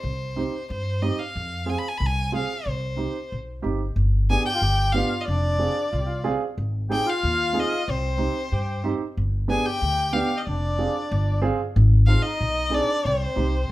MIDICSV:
0, 0, Header, 1, 5, 480
1, 0, Start_track
1, 0, Key_signature, -3, "minor"
1, 0, Tempo, 653595
1, 30, Time_signature, 2, 2, 24, 8
1, 4830, Tempo, 646552
1, 10130, End_track
2, 0, Start_track
2, 0, Title_t, "Violin"
2, 0, Program_c, 0, 40
2, 0, Note_on_c, 0, 72, 68
2, 515, Note_off_c, 0, 72, 0
2, 522, Note_on_c, 0, 72, 76
2, 752, Note_on_c, 0, 75, 72
2, 763, Note_off_c, 0, 72, 0
2, 879, Note_on_c, 0, 77, 75
2, 890, Note_off_c, 0, 75, 0
2, 1246, Note_on_c, 0, 80, 79
2, 1257, Note_off_c, 0, 77, 0
2, 1313, Note_on_c, 0, 83, 78
2, 1324, Note_off_c, 0, 80, 0
2, 1383, Note_on_c, 0, 80, 78
2, 1394, Note_off_c, 0, 83, 0
2, 1453, Note_on_c, 0, 83, 85
2, 1464, Note_off_c, 0, 80, 0
2, 1516, Note_on_c, 0, 80, 89
2, 1527, Note_off_c, 0, 83, 0
2, 1727, Note_off_c, 0, 80, 0
2, 1737, Note_on_c, 0, 77, 80
2, 1977, Note_on_c, 0, 72, 70
2, 1988, Note_off_c, 0, 77, 0
2, 2446, Note_off_c, 0, 72, 0
2, 3160, Note_on_c, 0, 80, 92
2, 3267, Note_off_c, 0, 80, 0
2, 3272, Note_on_c, 0, 79, 109
2, 3615, Note_on_c, 0, 77, 91
2, 3626, Note_off_c, 0, 79, 0
2, 3826, Note_on_c, 0, 75, 53
2, 3837, Note_off_c, 0, 77, 0
2, 3857, Note_on_c, 0, 74, 85
2, 3868, Note_off_c, 0, 75, 0
2, 4581, Note_off_c, 0, 74, 0
2, 5089, Note_on_c, 0, 79, 96
2, 5217, Note_on_c, 0, 77, 96
2, 5228, Note_off_c, 0, 79, 0
2, 5589, Note_on_c, 0, 75, 95
2, 5600, Note_off_c, 0, 77, 0
2, 5821, Note_on_c, 0, 72, 82
2, 5832, Note_off_c, 0, 75, 0
2, 6528, Note_off_c, 0, 72, 0
2, 7004, Note_on_c, 0, 80, 90
2, 7121, Note_on_c, 0, 79, 101
2, 7132, Note_off_c, 0, 80, 0
2, 7469, Note_on_c, 0, 77, 86
2, 7480, Note_off_c, 0, 79, 0
2, 7652, Note_on_c, 0, 75, 53
2, 7663, Note_off_c, 0, 77, 0
2, 7705, Note_on_c, 0, 74, 71
2, 7716, Note_off_c, 0, 75, 0
2, 8429, Note_off_c, 0, 74, 0
2, 8907, Note_on_c, 0, 77, 90
2, 9022, Note_on_c, 0, 75, 99
2, 9033, Note_off_c, 0, 77, 0
2, 9406, Note_on_c, 0, 74, 104
2, 9418, Note_off_c, 0, 75, 0
2, 9640, Note_on_c, 0, 72, 80
2, 9651, Note_off_c, 0, 74, 0
2, 10130, Note_off_c, 0, 72, 0
2, 10130, End_track
3, 0, Start_track
3, 0, Title_t, "Accordion"
3, 0, Program_c, 1, 21
3, 3163, Note_on_c, 1, 68, 77
3, 3271, Note_off_c, 1, 68, 0
3, 3288, Note_on_c, 1, 67, 81
3, 3334, Note_off_c, 1, 67, 0
3, 3339, Note_on_c, 1, 65, 70
3, 3390, Note_off_c, 1, 65, 0
3, 3392, Note_on_c, 1, 67, 85
3, 3619, Note_off_c, 1, 67, 0
3, 3642, Note_on_c, 1, 65, 78
3, 3860, Note_off_c, 1, 65, 0
3, 3888, Note_on_c, 1, 62, 72
3, 4329, Note_off_c, 1, 62, 0
3, 4349, Note_on_c, 1, 65, 57
3, 4402, Note_off_c, 1, 65, 0
3, 4406, Note_on_c, 1, 67, 55
3, 4453, Note_on_c, 1, 65, 65
3, 4462, Note_off_c, 1, 67, 0
3, 4576, Note_off_c, 1, 65, 0
3, 5068, Note_on_c, 1, 67, 89
3, 5190, Note_on_c, 1, 65, 95
3, 5193, Note_off_c, 1, 67, 0
3, 5762, Note_off_c, 1, 65, 0
3, 5794, Note_on_c, 1, 60, 73
3, 6244, Note_off_c, 1, 60, 0
3, 6273, Note_on_c, 1, 67, 68
3, 6497, Note_off_c, 1, 67, 0
3, 7002, Note_on_c, 1, 68, 83
3, 7114, Note_on_c, 1, 67, 86
3, 7122, Note_off_c, 1, 68, 0
3, 7685, Note_off_c, 1, 67, 0
3, 7731, Note_on_c, 1, 62, 68
3, 8412, Note_off_c, 1, 62, 0
3, 8921, Note_on_c, 1, 65, 90
3, 9040, Note_off_c, 1, 65, 0
3, 9041, Note_on_c, 1, 63, 80
3, 9371, Note_off_c, 1, 63, 0
3, 9398, Note_on_c, 1, 62, 86
3, 9632, Note_on_c, 1, 60, 72
3, 9641, Note_off_c, 1, 62, 0
3, 10130, Note_off_c, 1, 60, 0
3, 10130, End_track
4, 0, Start_track
4, 0, Title_t, "Upright piano"
4, 0, Program_c, 2, 0
4, 266, Note_on_c, 2, 60, 64
4, 267, Note_on_c, 2, 63, 59
4, 273, Note_on_c, 2, 67, 64
4, 389, Note_off_c, 2, 60, 0
4, 390, Note_off_c, 2, 63, 0
4, 392, Note_off_c, 2, 67, 0
4, 750, Note_on_c, 2, 60, 67
4, 750, Note_on_c, 2, 63, 57
4, 754, Note_on_c, 2, 67, 74
4, 872, Note_off_c, 2, 60, 0
4, 872, Note_off_c, 2, 63, 0
4, 874, Note_off_c, 2, 67, 0
4, 1218, Note_on_c, 2, 60, 67
4, 1221, Note_on_c, 2, 68, 70
4, 1223, Note_on_c, 2, 65, 55
4, 1346, Note_off_c, 2, 60, 0
4, 1348, Note_off_c, 2, 68, 0
4, 1349, Note_off_c, 2, 65, 0
4, 1705, Note_on_c, 2, 60, 66
4, 1705, Note_on_c, 2, 65, 59
4, 1712, Note_on_c, 2, 68, 68
4, 1830, Note_off_c, 2, 60, 0
4, 1830, Note_off_c, 2, 65, 0
4, 1834, Note_off_c, 2, 68, 0
4, 2176, Note_on_c, 2, 60, 51
4, 2182, Note_on_c, 2, 63, 61
4, 2187, Note_on_c, 2, 67, 65
4, 2306, Note_off_c, 2, 60, 0
4, 2309, Note_off_c, 2, 63, 0
4, 2311, Note_off_c, 2, 67, 0
4, 2660, Note_on_c, 2, 60, 64
4, 2664, Note_on_c, 2, 67, 81
4, 2665, Note_on_c, 2, 63, 65
4, 2788, Note_off_c, 2, 60, 0
4, 2790, Note_off_c, 2, 63, 0
4, 2790, Note_off_c, 2, 67, 0
4, 3156, Note_on_c, 2, 59, 55
4, 3158, Note_on_c, 2, 62, 58
4, 3160, Note_on_c, 2, 67, 65
4, 3275, Note_off_c, 2, 59, 0
4, 3276, Note_off_c, 2, 62, 0
4, 3277, Note_off_c, 2, 67, 0
4, 3629, Note_on_c, 2, 59, 65
4, 3631, Note_on_c, 2, 62, 56
4, 3632, Note_on_c, 2, 67, 80
4, 3750, Note_off_c, 2, 59, 0
4, 3751, Note_off_c, 2, 62, 0
4, 3752, Note_off_c, 2, 67, 0
4, 4100, Note_on_c, 2, 60, 64
4, 4107, Note_on_c, 2, 65, 50
4, 4108, Note_on_c, 2, 68, 66
4, 4225, Note_off_c, 2, 60, 0
4, 4229, Note_off_c, 2, 65, 0
4, 4229, Note_off_c, 2, 68, 0
4, 4582, Note_on_c, 2, 60, 77
4, 4582, Note_on_c, 2, 65, 75
4, 4585, Note_on_c, 2, 68, 93
4, 4705, Note_off_c, 2, 60, 0
4, 4705, Note_off_c, 2, 65, 0
4, 4706, Note_off_c, 2, 68, 0
4, 5065, Note_on_c, 2, 60, 56
4, 5069, Note_on_c, 2, 63, 57
4, 5072, Note_on_c, 2, 68, 74
4, 5187, Note_off_c, 2, 60, 0
4, 5189, Note_off_c, 2, 63, 0
4, 5191, Note_off_c, 2, 68, 0
4, 5538, Note_on_c, 2, 60, 70
4, 5538, Note_on_c, 2, 63, 55
4, 5548, Note_on_c, 2, 68, 80
4, 5665, Note_off_c, 2, 60, 0
4, 5665, Note_off_c, 2, 63, 0
4, 5670, Note_off_c, 2, 68, 0
4, 6014, Note_on_c, 2, 60, 63
4, 6021, Note_on_c, 2, 63, 62
4, 6025, Note_on_c, 2, 67, 59
4, 6144, Note_off_c, 2, 60, 0
4, 6147, Note_off_c, 2, 63, 0
4, 6149, Note_off_c, 2, 67, 0
4, 6508, Note_on_c, 2, 60, 78
4, 6514, Note_on_c, 2, 67, 86
4, 6516, Note_on_c, 2, 63, 78
4, 6631, Note_off_c, 2, 60, 0
4, 6634, Note_off_c, 2, 67, 0
4, 6635, Note_off_c, 2, 63, 0
4, 6985, Note_on_c, 2, 59, 67
4, 6985, Note_on_c, 2, 67, 67
4, 6986, Note_on_c, 2, 62, 64
4, 7110, Note_off_c, 2, 59, 0
4, 7110, Note_off_c, 2, 62, 0
4, 7110, Note_off_c, 2, 67, 0
4, 7466, Note_on_c, 2, 59, 69
4, 7473, Note_on_c, 2, 62, 64
4, 7477, Note_on_c, 2, 67, 72
4, 7590, Note_off_c, 2, 59, 0
4, 7594, Note_off_c, 2, 62, 0
4, 7596, Note_off_c, 2, 67, 0
4, 7953, Note_on_c, 2, 60, 61
4, 7954, Note_on_c, 2, 65, 57
4, 7957, Note_on_c, 2, 68, 66
4, 8074, Note_off_c, 2, 60, 0
4, 8074, Note_off_c, 2, 65, 0
4, 8076, Note_off_c, 2, 68, 0
4, 8422, Note_on_c, 2, 60, 90
4, 8427, Note_on_c, 2, 65, 70
4, 8427, Note_on_c, 2, 68, 95
4, 8548, Note_off_c, 2, 60, 0
4, 8550, Note_off_c, 2, 65, 0
4, 8550, Note_off_c, 2, 68, 0
4, 8910, Note_on_c, 2, 60, 57
4, 8915, Note_on_c, 2, 63, 60
4, 8918, Note_on_c, 2, 68, 60
4, 9031, Note_off_c, 2, 60, 0
4, 9034, Note_off_c, 2, 63, 0
4, 9035, Note_off_c, 2, 68, 0
4, 9374, Note_on_c, 2, 60, 67
4, 9380, Note_on_c, 2, 63, 63
4, 9385, Note_on_c, 2, 68, 76
4, 9502, Note_off_c, 2, 60, 0
4, 9505, Note_off_c, 2, 63, 0
4, 9508, Note_off_c, 2, 68, 0
4, 9865, Note_on_c, 2, 60, 56
4, 9865, Note_on_c, 2, 63, 62
4, 9869, Note_on_c, 2, 67, 74
4, 9987, Note_off_c, 2, 60, 0
4, 9987, Note_off_c, 2, 63, 0
4, 9989, Note_off_c, 2, 67, 0
4, 10130, End_track
5, 0, Start_track
5, 0, Title_t, "Upright bass"
5, 0, Program_c, 3, 32
5, 25, Note_on_c, 3, 36, 89
5, 316, Note_off_c, 3, 36, 0
5, 515, Note_on_c, 3, 43, 99
5, 803, Note_off_c, 3, 43, 0
5, 996, Note_on_c, 3, 41, 85
5, 1284, Note_off_c, 3, 41, 0
5, 1470, Note_on_c, 3, 36, 92
5, 1760, Note_off_c, 3, 36, 0
5, 1953, Note_on_c, 3, 36, 86
5, 2242, Note_off_c, 3, 36, 0
5, 2440, Note_on_c, 3, 35, 77
5, 2654, Note_off_c, 3, 35, 0
5, 2673, Note_on_c, 3, 31, 69
5, 2890, Note_off_c, 3, 31, 0
5, 2908, Note_on_c, 3, 31, 90
5, 3197, Note_off_c, 3, 31, 0
5, 3391, Note_on_c, 3, 31, 87
5, 3679, Note_off_c, 3, 31, 0
5, 3876, Note_on_c, 3, 29, 93
5, 4162, Note_off_c, 3, 29, 0
5, 4353, Note_on_c, 3, 36, 88
5, 4639, Note_off_c, 3, 36, 0
5, 4830, Note_on_c, 3, 32, 84
5, 5118, Note_off_c, 3, 32, 0
5, 5318, Note_on_c, 3, 39, 96
5, 5604, Note_off_c, 3, 39, 0
5, 5796, Note_on_c, 3, 36, 92
5, 6084, Note_off_c, 3, 36, 0
5, 6272, Note_on_c, 3, 43, 86
5, 6561, Note_off_c, 3, 43, 0
5, 6758, Note_on_c, 3, 31, 90
5, 7045, Note_off_c, 3, 31, 0
5, 7234, Note_on_c, 3, 38, 92
5, 7523, Note_off_c, 3, 38, 0
5, 7719, Note_on_c, 3, 29, 86
5, 8006, Note_off_c, 3, 29, 0
5, 8199, Note_on_c, 3, 31, 98
5, 8485, Note_off_c, 3, 31, 0
5, 8679, Note_on_c, 3, 32, 106
5, 8964, Note_off_c, 3, 32, 0
5, 9158, Note_on_c, 3, 35, 94
5, 9443, Note_off_c, 3, 35, 0
5, 9637, Note_on_c, 3, 36, 99
5, 9779, Note_off_c, 3, 36, 0
5, 9872, Note_on_c, 3, 36, 80
5, 10086, Note_off_c, 3, 36, 0
5, 10130, End_track
0, 0, End_of_file